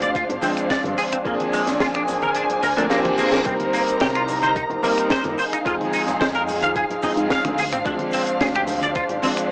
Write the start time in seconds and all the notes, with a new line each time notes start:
Already playing: D2 F3 G#3 C4 D4 C5 F5
0.02 D5, closed hi-hat, high conga, cabasa, shaker
0.15 F4, kick, closed hi-hat, cabasa, shaker
0.29 G#1, closed hi-hat, low conga
0.41 F3 G#3 C4 D4, open hi-hat, muted conga, high conga, cabasa, shaker
0.57 finger snap, closed hi-hat, cabasa, shaker
0.70 D5, kick, snare, closed hi-hat, cabasa, shaker
0.84 G2, closed hi-hat, high conga
0.98 G#4, open hi-hat, cabasa, shaker
1.12 C4, finger snap, closed hi-hat, muted conga, cabasa, shaker
1.24 A#1 F3 A#3 C4 D4 G#4 C5 G#5, kick, closed hi-hat, cabasa, shaker
1.40 closed hi-hat, high conga
1.53 G#3, open hi-hat, cabasa, shaker
1.67 A#1, snare, closed hi-hat, low conga, cabasa, shaker
1.80 A#1 F4, kick, snare, closed hi-hat, high conga, cabasa, shaker
1.94 D4, finger snap, closed hi-hat, muted conga
2.08 open hi-hat, low conga, cabasa, shaker
2.22 A#4, closed hi-hat, high conga, cabasa, shaker
2.35 D4, closed hi-hat, reverse cymbal, cabasa, shaker
2.50 closed hi-hat, low conga
2.63 D2 A#4, open hi-hat, muted conga, high conga, cabasa, shaker
2.77 D2 F3 A#3 C4 D4 A#4, closed hi-hat, cabasa, shaker
2.90 F3 A#3 C4 D4 G4, snare, closed hi-hat, cabasa, shaker
3.05 closed hi-hat, high tom, high conga
3.18 A#1 F3 A#3 C4 D4 G#4, open hi-hat, muted conga, cabasa, shaker
3.31 A#1 A#3, snare, closed hi-hat, muted conga, cabasa, shaker
3.44 C2 G3 A#3 C4 D#4 A#4 A#5, kick, closed hi-hat, cabasa, shaker
3.60 closed hi-hat, high conga
3.73 A#3, open hi-hat, cabasa, shaker
3.88 C2, closed hi-hat, cabasa, shaker
4.00 C2 G4, kick, snare, closed hi-hat, high conga, cabasa, shaker
4.15 F4, finger snap, closed hi-hat
4.28 open hi-hat, low conga, cabasa, shaker
4.42 C5, closed hi-hat, high conga, cabasa, shaker
4.56 D#4, kick, closed hi-hat, cabasa, shaker
4.70 G1, closed hi-hat, low conga
4.83 G3 A#3 C4 D#4 A#4, open hi-hat, muted conga, high conga, cabasa, shaker
4.97 finger snap, closed hi-hat, cabasa, shaker
5.10 C5, kick, snare, closed hi-hat, cabasa, shaker
5.24 F2, closed hi-hat, high conga
5.37 G#4 C5 F5, open hi-hat, cabasa, shaker
5.52 D#4, finger snap, closed hi-hat, muted conga, cabasa, shaker
5.65 F2 F3 G#3 C4 D#4 F4 G#4, kick, closed hi-hat, cabasa, shaker
5.81 closed hi-hat, high conga
5.93 D#4, open hi-hat, cabasa, shaker
6.06 F2, snare, closed hi-hat, low conga, cabasa, shaker
6.21 F2 C5, kick, snare, closed hi-hat, high conga, cabasa, shaker
6.35 A#4, closed hi-hat
6.47 open hi-hat, low conga, cabasa, shaker
6.62 F5, closed hi-hat, high conga, cabasa, shaker
6.75 G#4, kick, closed hi-hat, cabasa, shaker
6.90 closed hi-hat, low conga
7.03 F3 G#3 C4 D#4 G#4, kick, open hi-hat, muted conga, high conga, cabasa, shaker
7.17 G#2, closed hi-hat, cabasa, shaker
7.30 F5, kick, snare, closed hi-hat, cabasa, shaker
7.45 D2, finger snap, closed hi-hat, high conga
7.58 D4 G#4 C5, open hi-hat, cabasa, shaker
7.71 G#1 C4, finger snap, closed hi-hat, muted conga, cabasa, shaker
7.85 D2 F3 G#3 C4 D4, kick, closed hi-hat, cabasa, shaker
7.99 closed hi-hat, high conga
8.11 C4, open hi-hat, cabasa, shaker
8.27 D2, closed hi-hat, cabasa, shaker
8.40 D2 G#4, kick, snare, closed hi-hat, high conga, cabasa, shaker
8.55 G4, finger snap, closed hi-hat
8.67 open hi-hat, low conga, cabasa, shaker
8.82 D5, closed hi-hat, high conga, cabasa, shaker
8.95 F4, kick, closed hi-hat, cabasa, shaker
9.09 G#1, closed hi-hat, low conga
9.22 F3 G#3 C4 D4, open hi-hat, muted conga, high conga, cabasa, shaker
9.37 finger snap, closed hi-hat, cabasa, shaker